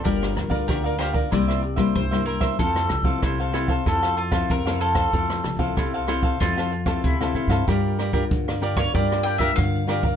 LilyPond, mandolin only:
\new Staff \with { instrumentName = "Mandolin" } { \time 4/4 \key f \major \tempo 4 = 94 bes'4 bes'8 c''8 d''4 c''8 bes'8 | a'4 c''4 a'8 f'8 bes'8 a'8~ | a'2 f'4 e'4 | r4. r16 des''16 d''8 g''16 e''16 f''4 | }